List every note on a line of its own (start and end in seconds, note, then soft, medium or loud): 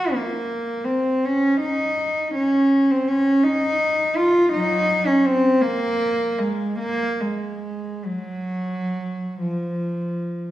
0.00 0.12 F#4 medium
0.14 0.86 A#3 medium
0.84 1.24 C4 medium
1.25 1.62 C#4 medium
1.61 2.34 D#4 medium
2.35 2.89 C#4 medium
2.91 3.09 C4 medium
3.08 3.44 C#4 medium
3.43 4.17 D#4 loud
4.17 4.53 F4 loud
4.53 5.02 F#3 medium
4.53 5.05 D#4 loud
5.06 5.24 C#4 medium
5.26 5.62 C4 loud
5.61 6.39 A#3 loud
6.38 6.79 G#3 medium
6.79 7.19 A#3 loud
7.20 8.05 G#3 medium
8.05 9.41 F#3 medium
9.41 10.51 F3 medium